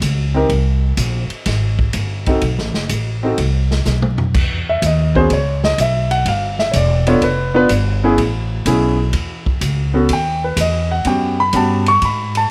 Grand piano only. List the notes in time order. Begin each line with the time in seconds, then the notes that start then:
0.34 C4 D#4 G4 A#4
2.27 C4 D#4 F#4 A4
3.23 C4 D#4 F#4 A4
4.69 E5
4.86 D#5
5.14 B3 C#4 F#4 G#4 C5
5.33 C#5
5.65 D#5
5.81 E5
6.11 F#5
6.29 F5
6.59 E5
6.72 C#5
6.76 D5
7.07 B3 D4 F4 A4 C#5
7.24 B4
7.54 B3 D4 F4 B4
8.04 B3 C#4 E4 G#4
8.66 B3 C#4 E4 G#4
9.94 B3 C#4 F#4 A4
10.13 G5
10.44 B4
10.61 D#5
10.91 F#5
11.06 B3 C#4 F#4 G4 G5
11.40 B5
11.53 B3 C#4 F#4 G4 A5
11.88 C#6
12.05 B5
12.37 A5